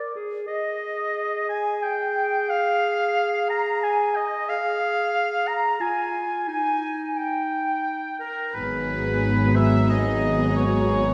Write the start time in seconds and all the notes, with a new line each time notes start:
Already playing: A#4 D5
0.15 G#4
0.48 G#4 D#5
1.49 G#5
1.83 G5
2.49 F5
3.49 A#5
3.82 G#5
4.15 D#5
4.49 G#4 F5
5.47 A#5
5.80 F4 G#5
6.48 D#4 G#5
7.17 G5
8.19 A#4
8.54 G#1 G#2 F#3 B3 D#4 G#4 B4
9.55 E5
9.89 D#5
10.56 C#5